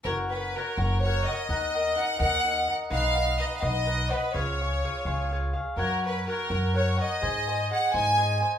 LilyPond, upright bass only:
\new Staff \with { instrumentName = "Upright bass" } { \clef bass \time 6/8 \key fis \major \tempo 4. = 84 fis,,4. fis,,4. | dis,4. dis,4. | b,,4. b,,4. | cis,4. cis,4. |
fis,4. fis,4. | gis,4. gis,4. | }